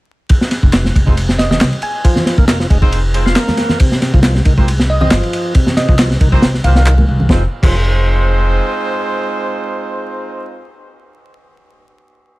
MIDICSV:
0, 0, Header, 1, 6, 480
1, 0, Start_track
1, 0, Key_signature, -4, "minor"
1, 0, Tempo, 437956
1, 322, Time_signature, 4, 2, 24, 8
1, 13583, End_track
2, 0, Start_track
2, 0, Title_t, "Synth pluck"
2, 0, Program_c, 0, 84
2, 1518, Note_on_c, 0, 75, 87
2, 1603, Note_off_c, 0, 75, 0
2, 1655, Note_on_c, 0, 75, 74
2, 1724, Note_off_c, 0, 75, 0
2, 2004, Note_on_c, 0, 80, 90
2, 2372, Note_off_c, 0, 80, 0
2, 5368, Note_on_c, 0, 75, 91
2, 5447, Note_off_c, 0, 75, 0
2, 5495, Note_on_c, 0, 75, 76
2, 5564, Note_off_c, 0, 75, 0
2, 6321, Note_on_c, 0, 75, 89
2, 6536, Note_off_c, 0, 75, 0
2, 7278, Note_on_c, 0, 77, 88
2, 7362, Note_off_c, 0, 77, 0
2, 7415, Note_on_c, 0, 77, 81
2, 7484, Note_off_c, 0, 77, 0
2, 13583, End_track
3, 0, Start_track
3, 0, Title_t, "Horn section"
3, 0, Program_c, 1, 61
3, 1169, Note_on_c, 1, 63, 62
3, 1169, Note_on_c, 1, 65, 62
3, 1170, Note_on_c, 1, 56, 69
3, 1170, Note_on_c, 1, 60, 68
3, 1170, Note_on_c, 1, 72, 74
3, 1277, Note_off_c, 1, 63, 0
3, 1277, Note_off_c, 1, 65, 0
3, 1278, Note_off_c, 1, 56, 0
3, 1278, Note_off_c, 1, 60, 0
3, 1278, Note_off_c, 1, 72, 0
3, 3086, Note_on_c, 1, 65, 85
3, 3087, Note_on_c, 1, 56, 89
3, 3087, Note_on_c, 1, 60, 93
3, 3087, Note_on_c, 1, 63, 84
3, 3087, Note_on_c, 1, 72, 101
3, 3270, Note_off_c, 1, 65, 0
3, 3271, Note_off_c, 1, 56, 0
3, 3271, Note_off_c, 1, 60, 0
3, 3271, Note_off_c, 1, 63, 0
3, 3271, Note_off_c, 1, 72, 0
3, 3441, Note_on_c, 1, 63, 70
3, 3442, Note_on_c, 1, 56, 77
3, 3442, Note_on_c, 1, 65, 69
3, 3444, Note_on_c, 1, 60, 81
3, 3444, Note_on_c, 1, 72, 88
3, 3566, Note_off_c, 1, 63, 0
3, 3567, Note_off_c, 1, 56, 0
3, 3567, Note_off_c, 1, 65, 0
3, 3568, Note_off_c, 1, 60, 0
3, 3568, Note_off_c, 1, 72, 0
3, 5011, Note_on_c, 1, 58, 72
3, 5011, Note_on_c, 1, 65, 66
3, 5012, Note_on_c, 1, 60, 74
3, 5012, Note_on_c, 1, 72, 81
3, 5013, Note_on_c, 1, 67, 67
3, 5119, Note_off_c, 1, 58, 0
3, 5119, Note_off_c, 1, 60, 0
3, 5119, Note_off_c, 1, 65, 0
3, 5119, Note_off_c, 1, 72, 0
3, 5120, Note_off_c, 1, 67, 0
3, 6929, Note_on_c, 1, 65, 88
3, 6931, Note_on_c, 1, 67, 86
3, 6932, Note_on_c, 1, 58, 98
3, 6932, Note_on_c, 1, 60, 96
3, 6932, Note_on_c, 1, 72, 104
3, 7112, Note_off_c, 1, 65, 0
3, 7113, Note_off_c, 1, 67, 0
3, 7114, Note_off_c, 1, 58, 0
3, 7114, Note_off_c, 1, 60, 0
3, 7114, Note_off_c, 1, 72, 0
3, 7280, Note_on_c, 1, 58, 79
3, 7281, Note_on_c, 1, 60, 79
3, 7281, Note_on_c, 1, 72, 86
3, 7282, Note_on_c, 1, 65, 72
3, 7283, Note_on_c, 1, 67, 76
3, 7406, Note_off_c, 1, 58, 0
3, 7406, Note_off_c, 1, 60, 0
3, 7406, Note_off_c, 1, 72, 0
3, 7407, Note_off_c, 1, 65, 0
3, 7407, Note_off_c, 1, 67, 0
3, 8000, Note_on_c, 1, 56, 82
3, 8001, Note_on_c, 1, 60, 84
3, 8001, Note_on_c, 1, 63, 78
3, 8001, Note_on_c, 1, 65, 76
3, 8001, Note_on_c, 1, 72, 91
3, 8141, Note_off_c, 1, 56, 0
3, 8142, Note_off_c, 1, 60, 0
3, 8142, Note_off_c, 1, 63, 0
3, 8142, Note_off_c, 1, 65, 0
3, 8142, Note_off_c, 1, 72, 0
3, 8370, Note_on_c, 1, 56, 92
3, 8371, Note_on_c, 1, 60, 94
3, 8371, Note_on_c, 1, 63, 85
3, 8371, Note_on_c, 1, 65, 87
3, 8371, Note_on_c, 1, 72, 102
3, 11708, Note_off_c, 1, 56, 0
3, 11708, Note_off_c, 1, 60, 0
3, 11708, Note_off_c, 1, 63, 0
3, 11708, Note_off_c, 1, 72, 0
3, 11709, Note_off_c, 1, 65, 0
3, 13583, End_track
4, 0, Start_track
4, 0, Title_t, "Tonewheel organ"
4, 0, Program_c, 2, 16
4, 2242, Note_on_c, 2, 53, 80
4, 2466, Note_off_c, 2, 53, 0
4, 2479, Note_on_c, 2, 53, 70
4, 2597, Note_off_c, 2, 53, 0
4, 2609, Note_on_c, 2, 58, 86
4, 2685, Note_off_c, 2, 58, 0
4, 2719, Note_on_c, 2, 58, 77
4, 2836, Note_off_c, 2, 58, 0
4, 2847, Note_on_c, 2, 53, 68
4, 2924, Note_off_c, 2, 53, 0
4, 2960, Note_on_c, 2, 56, 71
4, 3048, Note_off_c, 2, 56, 0
4, 3571, Note_on_c, 2, 65, 73
4, 3671, Note_off_c, 2, 65, 0
4, 3680, Note_on_c, 2, 58, 80
4, 4150, Note_off_c, 2, 58, 0
4, 4160, Note_on_c, 2, 48, 80
4, 4390, Note_off_c, 2, 48, 0
4, 4403, Note_on_c, 2, 48, 75
4, 4518, Note_off_c, 2, 48, 0
4, 4531, Note_on_c, 2, 53, 92
4, 4606, Note_off_c, 2, 53, 0
4, 4643, Note_on_c, 2, 53, 78
4, 4759, Note_off_c, 2, 53, 0
4, 4771, Note_on_c, 2, 48, 74
4, 4846, Note_off_c, 2, 48, 0
4, 4879, Note_on_c, 2, 51, 72
4, 4967, Note_off_c, 2, 51, 0
4, 5488, Note_on_c, 2, 60, 73
4, 5589, Note_off_c, 2, 60, 0
4, 5600, Note_on_c, 2, 53, 77
4, 6070, Note_off_c, 2, 53, 0
4, 6081, Note_on_c, 2, 48, 81
4, 6307, Note_off_c, 2, 48, 0
4, 6320, Note_on_c, 2, 48, 75
4, 6437, Note_off_c, 2, 48, 0
4, 6448, Note_on_c, 2, 53, 96
4, 6524, Note_off_c, 2, 53, 0
4, 6562, Note_on_c, 2, 53, 79
4, 6678, Note_off_c, 2, 53, 0
4, 6689, Note_on_c, 2, 48, 74
4, 6765, Note_off_c, 2, 48, 0
4, 6799, Note_on_c, 2, 51, 72
4, 6888, Note_off_c, 2, 51, 0
4, 7412, Note_on_c, 2, 51, 74
4, 7486, Note_off_c, 2, 51, 0
4, 7521, Note_on_c, 2, 51, 80
4, 7608, Note_off_c, 2, 51, 0
4, 7652, Note_on_c, 2, 46, 73
4, 7726, Note_off_c, 2, 46, 0
4, 8004, Note_on_c, 2, 53, 91
4, 8144, Note_off_c, 2, 53, 0
4, 8372, Note_on_c, 2, 53, 83
4, 8499, Note_off_c, 2, 53, 0
4, 13583, End_track
5, 0, Start_track
5, 0, Title_t, "Upright bass"
5, 0, Program_c, 3, 32
5, 688, Note_on_c, 3, 29, 85
5, 997, Note_off_c, 3, 29, 0
5, 1046, Note_on_c, 3, 29, 78
5, 1721, Note_off_c, 3, 29, 0
5, 1761, Note_on_c, 3, 36, 81
5, 1859, Note_off_c, 3, 36, 0
5, 2606, Note_on_c, 3, 29, 88
5, 2916, Note_off_c, 3, 29, 0
5, 2963, Note_on_c, 3, 29, 77
5, 3639, Note_off_c, 3, 29, 0
5, 4535, Note_on_c, 3, 36, 93
5, 4841, Note_off_c, 3, 36, 0
5, 4886, Note_on_c, 3, 36, 80
5, 5560, Note_off_c, 3, 36, 0
5, 5601, Note_on_c, 3, 31, 86
5, 5699, Note_off_c, 3, 31, 0
5, 6451, Note_on_c, 3, 36, 97
5, 6759, Note_off_c, 3, 36, 0
5, 6803, Note_on_c, 3, 36, 80
5, 7036, Note_off_c, 3, 36, 0
5, 7042, Note_on_c, 3, 36, 79
5, 7228, Note_off_c, 3, 36, 0
5, 7279, Note_on_c, 3, 36, 94
5, 7717, Note_off_c, 3, 36, 0
5, 7764, Note_on_c, 3, 36, 92
5, 7948, Note_off_c, 3, 36, 0
5, 7993, Note_on_c, 3, 29, 93
5, 8138, Note_off_c, 3, 29, 0
5, 8361, Note_on_c, 3, 29, 93
5, 9393, Note_off_c, 3, 29, 0
5, 13583, End_track
6, 0, Start_track
6, 0, Title_t, "Drums"
6, 322, Note_on_c, 9, 51, 79
6, 329, Note_on_c, 9, 36, 105
6, 432, Note_off_c, 9, 51, 0
6, 438, Note_off_c, 9, 36, 0
6, 452, Note_on_c, 9, 38, 53
6, 558, Note_on_c, 9, 51, 64
6, 561, Note_off_c, 9, 38, 0
6, 561, Note_on_c, 9, 38, 34
6, 668, Note_off_c, 9, 51, 0
6, 671, Note_off_c, 9, 38, 0
6, 690, Note_on_c, 9, 36, 81
6, 798, Note_on_c, 9, 39, 93
6, 798, Note_on_c, 9, 51, 71
6, 799, Note_off_c, 9, 36, 0
6, 803, Note_on_c, 9, 38, 101
6, 907, Note_off_c, 9, 51, 0
6, 908, Note_off_c, 9, 39, 0
6, 913, Note_off_c, 9, 38, 0
6, 923, Note_on_c, 9, 63, 54
6, 934, Note_on_c, 9, 38, 46
6, 1033, Note_off_c, 9, 63, 0
6, 1043, Note_off_c, 9, 38, 0
6, 1047, Note_on_c, 9, 36, 79
6, 1050, Note_on_c, 9, 51, 65
6, 1156, Note_off_c, 9, 36, 0
6, 1159, Note_off_c, 9, 51, 0
6, 1169, Note_on_c, 9, 63, 58
6, 1177, Note_on_c, 9, 36, 86
6, 1279, Note_off_c, 9, 63, 0
6, 1285, Note_on_c, 9, 51, 76
6, 1287, Note_off_c, 9, 36, 0
6, 1394, Note_off_c, 9, 51, 0
6, 1413, Note_on_c, 9, 38, 46
6, 1521, Note_off_c, 9, 38, 0
6, 1521, Note_on_c, 9, 38, 46
6, 1525, Note_on_c, 9, 51, 58
6, 1631, Note_off_c, 9, 38, 0
6, 1635, Note_off_c, 9, 51, 0
6, 1655, Note_on_c, 9, 64, 89
6, 1657, Note_on_c, 9, 38, 51
6, 1761, Note_on_c, 9, 39, 101
6, 1764, Note_off_c, 9, 64, 0
6, 1764, Note_on_c, 9, 51, 80
6, 1766, Note_off_c, 9, 38, 0
6, 1766, Note_on_c, 9, 38, 104
6, 1870, Note_off_c, 9, 39, 0
6, 1873, Note_off_c, 9, 51, 0
6, 1875, Note_off_c, 9, 38, 0
6, 1893, Note_on_c, 9, 51, 39
6, 1993, Note_off_c, 9, 51, 0
6, 1993, Note_on_c, 9, 51, 56
6, 2103, Note_off_c, 9, 51, 0
6, 2242, Note_on_c, 9, 51, 85
6, 2243, Note_on_c, 9, 36, 98
6, 2351, Note_off_c, 9, 51, 0
6, 2353, Note_off_c, 9, 36, 0
6, 2364, Note_on_c, 9, 38, 42
6, 2375, Note_on_c, 9, 64, 80
6, 2473, Note_off_c, 9, 38, 0
6, 2477, Note_on_c, 9, 38, 42
6, 2485, Note_off_c, 9, 64, 0
6, 2488, Note_on_c, 9, 51, 64
6, 2586, Note_off_c, 9, 38, 0
6, 2597, Note_off_c, 9, 51, 0
6, 2607, Note_on_c, 9, 36, 97
6, 2715, Note_on_c, 9, 38, 102
6, 2717, Note_off_c, 9, 36, 0
6, 2722, Note_on_c, 9, 39, 101
6, 2722, Note_on_c, 9, 51, 86
6, 2825, Note_off_c, 9, 38, 0
6, 2831, Note_off_c, 9, 39, 0
6, 2832, Note_off_c, 9, 51, 0
6, 2851, Note_on_c, 9, 38, 49
6, 2961, Note_off_c, 9, 38, 0
6, 2962, Note_on_c, 9, 36, 84
6, 2964, Note_on_c, 9, 51, 61
6, 3071, Note_off_c, 9, 36, 0
6, 3073, Note_off_c, 9, 51, 0
6, 3090, Note_on_c, 9, 36, 95
6, 3200, Note_off_c, 9, 36, 0
6, 3204, Note_on_c, 9, 51, 87
6, 3314, Note_off_c, 9, 51, 0
6, 3444, Note_on_c, 9, 51, 67
6, 3553, Note_off_c, 9, 51, 0
6, 3577, Note_on_c, 9, 38, 47
6, 3681, Note_on_c, 9, 39, 104
6, 3682, Note_off_c, 9, 38, 0
6, 3682, Note_on_c, 9, 38, 100
6, 3689, Note_on_c, 9, 51, 80
6, 3790, Note_off_c, 9, 39, 0
6, 3792, Note_off_c, 9, 38, 0
6, 3799, Note_off_c, 9, 51, 0
6, 3808, Note_on_c, 9, 38, 47
6, 3813, Note_on_c, 9, 63, 77
6, 3817, Note_on_c, 9, 64, 75
6, 3917, Note_on_c, 9, 51, 63
6, 3918, Note_off_c, 9, 38, 0
6, 3921, Note_on_c, 9, 38, 44
6, 3923, Note_off_c, 9, 63, 0
6, 3926, Note_off_c, 9, 64, 0
6, 4026, Note_off_c, 9, 51, 0
6, 4030, Note_off_c, 9, 38, 0
6, 4047, Note_on_c, 9, 38, 37
6, 4049, Note_on_c, 9, 64, 78
6, 4156, Note_off_c, 9, 38, 0
6, 4158, Note_off_c, 9, 64, 0
6, 4162, Note_on_c, 9, 51, 93
6, 4167, Note_on_c, 9, 36, 110
6, 4271, Note_off_c, 9, 51, 0
6, 4277, Note_off_c, 9, 36, 0
6, 4294, Note_on_c, 9, 38, 47
6, 4404, Note_off_c, 9, 38, 0
6, 4404, Note_on_c, 9, 51, 64
6, 4405, Note_on_c, 9, 38, 37
6, 4513, Note_off_c, 9, 51, 0
6, 4515, Note_off_c, 9, 38, 0
6, 4535, Note_on_c, 9, 36, 96
6, 4633, Note_on_c, 9, 38, 112
6, 4641, Note_on_c, 9, 39, 103
6, 4642, Note_on_c, 9, 51, 76
6, 4644, Note_off_c, 9, 36, 0
6, 4742, Note_off_c, 9, 38, 0
6, 4750, Note_off_c, 9, 39, 0
6, 4752, Note_off_c, 9, 51, 0
6, 4768, Note_on_c, 9, 38, 51
6, 4776, Note_on_c, 9, 63, 56
6, 4877, Note_off_c, 9, 38, 0
6, 4879, Note_on_c, 9, 51, 64
6, 4886, Note_off_c, 9, 63, 0
6, 4887, Note_on_c, 9, 36, 95
6, 4989, Note_off_c, 9, 51, 0
6, 4996, Note_off_c, 9, 36, 0
6, 5016, Note_on_c, 9, 36, 95
6, 5021, Note_on_c, 9, 63, 57
6, 5125, Note_off_c, 9, 36, 0
6, 5129, Note_on_c, 9, 51, 84
6, 5130, Note_off_c, 9, 63, 0
6, 5239, Note_off_c, 9, 51, 0
6, 5255, Note_on_c, 9, 38, 53
6, 5364, Note_off_c, 9, 38, 0
6, 5492, Note_on_c, 9, 64, 88
6, 5599, Note_on_c, 9, 51, 80
6, 5600, Note_on_c, 9, 38, 102
6, 5601, Note_on_c, 9, 39, 107
6, 5602, Note_off_c, 9, 64, 0
6, 5709, Note_off_c, 9, 51, 0
6, 5710, Note_off_c, 9, 38, 0
6, 5710, Note_off_c, 9, 39, 0
6, 5736, Note_on_c, 9, 51, 43
6, 5844, Note_off_c, 9, 51, 0
6, 5844, Note_on_c, 9, 51, 67
6, 5953, Note_off_c, 9, 51, 0
6, 6079, Note_on_c, 9, 51, 80
6, 6084, Note_on_c, 9, 36, 115
6, 6188, Note_off_c, 9, 51, 0
6, 6193, Note_off_c, 9, 36, 0
6, 6208, Note_on_c, 9, 64, 72
6, 6211, Note_on_c, 9, 38, 54
6, 6317, Note_off_c, 9, 64, 0
6, 6320, Note_off_c, 9, 38, 0
6, 6320, Note_on_c, 9, 38, 46
6, 6325, Note_on_c, 9, 51, 70
6, 6430, Note_off_c, 9, 38, 0
6, 6435, Note_off_c, 9, 51, 0
6, 6452, Note_on_c, 9, 36, 99
6, 6559, Note_on_c, 9, 39, 103
6, 6559, Note_on_c, 9, 51, 87
6, 6561, Note_off_c, 9, 36, 0
6, 6562, Note_on_c, 9, 38, 114
6, 6669, Note_off_c, 9, 39, 0
6, 6669, Note_off_c, 9, 51, 0
6, 6671, Note_off_c, 9, 38, 0
6, 6693, Note_on_c, 9, 38, 49
6, 6802, Note_off_c, 9, 38, 0
6, 6802, Note_on_c, 9, 36, 87
6, 6802, Note_on_c, 9, 51, 60
6, 6911, Note_off_c, 9, 51, 0
6, 6912, Note_off_c, 9, 36, 0
6, 6929, Note_on_c, 9, 36, 99
6, 7039, Note_off_c, 9, 36, 0
6, 7039, Note_on_c, 9, 38, 106
6, 7043, Note_on_c, 9, 51, 79
6, 7149, Note_off_c, 9, 38, 0
6, 7152, Note_off_c, 9, 51, 0
6, 7170, Note_on_c, 9, 38, 46
6, 7278, Note_on_c, 9, 51, 66
6, 7280, Note_off_c, 9, 38, 0
6, 7388, Note_off_c, 9, 51, 0
6, 7400, Note_on_c, 9, 38, 46
6, 7510, Note_off_c, 9, 38, 0
6, 7519, Note_on_c, 9, 39, 108
6, 7629, Note_off_c, 9, 39, 0
6, 7648, Note_on_c, 9, 64, 73
6, 7651, Note_on_c, 9, 63, 88
6, 7758, Note_off_c, 9, 64, 0
6, 7761, Note_off_c, 9, 63, 0
6, 7890, Note_on_c, 9, 64, 80
6, 7992, Note_on_c, 9, 36, 109
6, 7997, Note_on_c, 9, 38, 89
6, 8000, Note_off_c, 9, 64, 0
6, 8102, Note_off_c, 9, 36, 0
6, 8107, Note_off_c, 9, 38, 0
6, 8361, Note_on_c, 9, 36, 112
6, 8364, Note_on_c, 9, 49, 94
6, 8470, Note_off_c, 9, 36, 0
6, 8474, Note_off_c, 9, 49, 0
6, 13583, End_track
0, 0, End_of_file